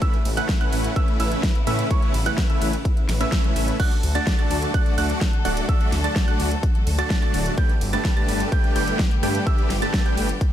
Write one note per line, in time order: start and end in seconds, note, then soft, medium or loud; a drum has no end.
0.00 3.76 C#3 medium
0.00 3.76 E3 medium
0.00 3.76 A3 medium
0.00 0.16 A3 medium
0.00 3.76 B3 medium
0.00 0.16 C#4 medium
0.00 3.76 E4 medium
0.00 0.16 E4 medium
0.00 0.16 E5 loud
0.00 0.16 E6 loud
0.00 kick loud
0.00 closed hi-hat medium
0.14 closed hi-hat soft
0.25 0.41 A1 loud
0.25 open hi-hat loud
0.25 ride medium
0.37 0.58 A3 loud
0.37 0.58 C#4 medium
0.37 0.58 E4 medium
0.37 0.58 B4 medium
0.37 0.58 F#5 loud
0.37 0.58 F#6 loud
0.37 closed hi-hat medium
0.49 kick loud
0.49 snare loud
0.49 closed hi-hat medium
0.61 0.93 A3 medium
0.61 0.93 C#4 medium
0.61 0.93 E4 medium
0.61 0.93 B4 medium
0.61 0.93 F#5 loud
0.61 0.93 F#6 loud
0.61 closed hi-hat soft
0.73 0.88 A1 medium
0.73 open hi-hat loud
0.73 ride medium
0.84 closed hi-hat medium
0.96 1.17 A3 loud
0.96 1.17 C#4 medium
0.96 1.17 B4 medium
0.96 1.17 E5 loud
0.96 1.17 E6 loud
0.96 kick loud
0.96 closed hi-hat medium
1.08 closed hi-hat soft
1.20 1.35 A1 medium
1.20 1.42 A3 loud
1.20 1.42 C#4 loud
1.20 1.42 E4 medium
1.20 1.42 B4 loud
1.20 1.42 E5 loud
1.20 1.42 E6 loud
1.20 open hi-hat loud
1.20 ride medium
1.32 closed hi-hat medium
1.43 kick loud
1.43 snare loud
1.43 closed hi-hat medium
1.55 closed hi-hat soft
1.67 1.82 A2 loud
1.67 1.88 A3 medium
1.67 1.88 C#4 medium
1.67 1.88 E4 medium
1.67 1.88 B4 medium
1.67 1.88 E5 loud
1.67 1.88 E6 medium
1.67 open hi-hat loud
1.67 ride medium
1.79 closed hi-hat medium
1.91 2.13 A3 medium
1.91 2.13 C#4 medium
1.91 2.13 E4 medium
1.91 2.13 B4 medium
1.91 2.13 C#5 loud
1.91 2.13 C#6 loud
1.91 kick loud
1.91 closed hi-hat medium
2.02 closed hi-hat soft
2.14 2.30 A1 medium
2.14 open hi-hat loud
2.14 ride medium
2.26 2.47 A3 medium
2.26 2.47 C#4 medium
2.26 2.47 E4 medium
2.26 2.47 B4 medium
2.26 2.47 F#5 loud
2.26 2.47 F#6 loud
2.26 closed hi-hat medium
2.38 kick loud
2.38 snare loud
2.38 closed hi-hat medium
2.50 2.72 A3 medium
2.50 2.72 C#4 medium
2.50 2.72 E4 medium
2.50 2.72 B4 medium
2.50 2.72 E5 medium
2.50 2.72 E6 medium
2.50 closed hi-hat soft
2.62 2.77 A1 medium
2.62 open hi-hat loud
2.62 ride medium
2.73 closed hi-hat medium
2.85 kick loud
2.85 closed hi-hat medium
2.97 closed hi-hat soft
3.09 3.24 A1 medium
3.09 finger snap medium
3.09 snare medium
3.09 open hi-hat loud
3.09 ride medium
3.21 3.77 A3 medium
3.21 3.77 C#4 medium
3.21 3.77 E4 medium
3.21 3.77 B4 medium
3.21 3.77 E5 medium
3.21 3.77 E6 medium
3.21 closed hi-hat medium
3.32 kick loud
3.32 snare loud
3.32 closed hi-hat medium
3.44 closed hi-hat soft
3.56 3.71 A1 medium
3.56 open hi-hat loud
3.56 ride medium
3.68 closed hi-hat medium
3.80 10.53 D3 medium
3.80 7.54 F#3 medium
3.80 3.94 A3 medium
3.80 10.53 A3 medium
3.80 3.94 D4 medium
3.80 3.94 F#4 medium
3.80 7.54 F#4 medium
3.80 7.54 A4 medium
3.80 3.94 D5 medium
3.80 3.94 F#5 loud
3.80 3.94 F#6 loud
3.80 kick loud
3.80 closed hi-hat medium
3.80 crash loud
3.92 closed hi-hat soft
4.03 4.19 D2 loud
4.03 open hi-hat loud
4.03 ride medium
4.15 4.36 A3 medium
4.15 4.36 D4 medium
4.15 4.36 F#4 medium
4.15 4.36 D5 medium
4.15 4.36 A5 loud
4.15 4.36 A6 loud
4.15 closed hi-hat medium
4.27 kick loud
4.27 snare loud
4.27 closed hi-hat medium
4.39 4.71 A3 medium
4.39 4.71 D4 medium
4.39 4.71 F#4 medium
4.39 4.71 D5 medium
4.39 4.71 A5 loud
4.39 4.71 A6 medium
4.39 closed hi-hat soft
4.51 4.66 D2 loud
4.51 open hi-hat loud
4.51 ride medium
4.62 closed hi-hat medium
4.74 4.95 A3 loud
4.74 4.95 F#4 medium
4.74 4.95 D5 medium
4.74 4.95 F#5 loud
4.74 4.95 F#6 loud
4.74 kick loud
4.74 closed hi-hat medium
4.86 closed hi-hat soft
4.98 5.13 D2 medium
4.98 5.20 A3 loud
4.98 5.20 D4 loud
4.98 5.20 F#4 loud
4.98 5.20 D5 loud
4.98 5.20 F#5 loud
4.98 5.20 F#6 loud
4.98 open hi-hat loud
4.98 ride medium
5.10 closed hi-hat medium
5.21 kick loud
5.21 snare loud
5.21 closed hi-hat medium
5.33 closed hi-hat soft
5.45 5.61 D1 loud
5.45 5.66 A3 medium
5.45 5.66 D4 medium
5.45 5.66 F#4 medium
5.45 5.66 D5 medium
5.45 5.66 F#5 loud
5.45 5.66 F#6 medium
5.45 open hi-hat loud
5.45 ride medium
5.57 closed hi-hat medium
5.69 5.91 A3 medium
5.69 5.91 D4 medium
5.69 5.91 F#4 medium
5.69 5.91 D5 medium
5.69 5.91 E6 loud
5.69 kick loud
5.69 closed hi-hat medium
5.81 closed hi-hat soft
5.92 6.08 D2 loud
5.92 snare medium
5.92 open hi-hat loud
5.92 ride medium
6.04 6.25 A3 medium
6.04 6.25 D4 medium
6.04 6.25 F#4 medium
6.04 6.25 D5 medium
6.04 6.25 A5 loud
6.04 6.25 A6 loud
6.04 closed hi-hat medium
6.16 kick loud
6.16 snare loud
6.16 closed hi-hat medium
6.28 6.50 A3 medium
6.28 6.50 D4 medium
6.28 6.50 F#4 medium
6.28 6.50 D5 medium
6.28 6.50 F#5 medium
6.28 6.50 F#6 medium
6.28 closed hi-hat soft
6.40 6.55 D2 medium
6.40 open hi-hat loud
6.40 ride medium
6.51 closed hi-hat medium
6.63 kick loud
6.63 closed hi-hat medium
6.75 closed hi-hat soft
6.87 7.02 D2 medium
6.87 open hi-hat loud
6.87 ride medium
6.98 7.19 A3 medium
6.98 7.19 D4 medium
6.98 7.19 F#4 medium
6.98 7.19 D5 medium
6.98 7.19 A5 loud
6.98 7.19 A6 loud
6.98 closed hi-hat medium
7.10 kick loud
7.10 snare loud
7.10 closed hi-hat medium
7.22 7.55 A3 medium
7.22 7.55 D4 medium
7.22 7.55 F#4 medium
7.22 7.55 D5 medium
7.22 7.55 A5 loud
7.22 7.55 A6 loud
7.22 closed hi-hat soft
7.34 7.49 D1 loud
7.34 open hi-hat loud
7.34 ride medium
7.46 closed hi-hat medium
7.58 10.53 G3 medium
7.58 10.53 B3 medium
7.58 7.72 D4 medium
7.58 7.72 G4 medium
7.58 10.53 G4 medium
7.58 7.72 B4 medium
7.58 7.72 G5 loud
7.58 7.72 G6 loud
7.58 kick loud
7.58 closed hi-hat medium
7.69 closed hi-hat soft
7.81 7.97 G1 loud
7.81 open hi-hat loud
7.81 ride medium
7.93 8.14 A3 medium
7.93 8.14 D4 medium
7.93 8.14 G4 medium
7.93 8.14 B4 medium
7.93 8.14 A5 loud
7.93 8.14 A6 loud
7.93 closed hi-hat medium
8.05 kick loud
8.05 snare loud
8.05 closed hi-hat medium
8.17 8.49 A3 medium
8.17 8.49 D4 medium
8.17 8.49 G4 medium
8.17 8.49 B4 medium
8.17 8.49 A5 medium
8.17 8.49 A6 loud
8.17 closed hi-hat soft
8.28 8.44 G1 medium
8.28 open hi-hat loud
8.28 ride medium
8.40 closed hi-hat medium
8.52 8.73 A3 loud
8.52 8.73 D4 medium
8.52 8.73 G4 medium
8.52 8.73 B4 medium
8.52 8.73 G5 loud
8.52 8.73 G6 loud
8.52 kick loud
8.52 closed hi-hat medium
8.64 closed hi-hat soft
8.76 8.91 G1 medium
8.76 8.98 A3 loud
8.76 8.98 D4 loud
8.76 8.98 G4 loud
8.76 8.98 B4 loud
8.76 8.98 G5 loud
8.76 8.98 G6 loud
8.76 open hi-hat loud
8.76 ride medium
8.88 closed hi-hat medium
8.99 kick loud
8.99 snare loud
8.99 closed hi-hat medium
9.11 closed hi-hat soft
9.23 9.38 G2 loud
9.23 9.44 A3 medium
9.23 9.44 D4 medium
9.23 9.44 G4 medium
9.23 9.44 B4 medium
9.23 9.44 G5 loud
9.23 9.44 G6 medium
9.23 open hi-hat loud
9.23 ride medium
9.35 closed hi-hat medium
9.46 9.69 A3 medium
9.46 9.69 D4 medium
9.46 9.69 G4 medium
9.46 9.69 B4 medium
9.46 9.69 E5 loud
9.46 9.69 E6 loud
9.46 kick loud
9.46 closed hi-hat soft
9.58 closed hi-hat soft
9.70 9.86 G1 loud
9.70 snare medium
9.70 open hi-hat loud
9.70 ride medium
9.82 10.03 A3 medium
9.82 10.03 D4 medium
9.82 10.03 G4 medium
9.82 10.03 B4 medium
9.82 10.03 A5 medium
9.82 10.03 A6 loud
9.82 closed hi-hat medium
9.94 kick loud
9.94 snare loud
9.94 closed hi-hat medium
10.06 10.28 A3 medium
10.06 10.28 D4 medium
10.06 10.28 G4 medium
10.06 10.28 B4 medium
10.06 10.28 G5 medium
10.06 10.28 G6 medium
10.06 closed hi-hat soft
10.17 10.33 G1 medium
10.17 open hi-hat loud
10.17 ride medium
10.29 closed hi-hat medium
10.41 kick loud
10.41 closed hi-hat medium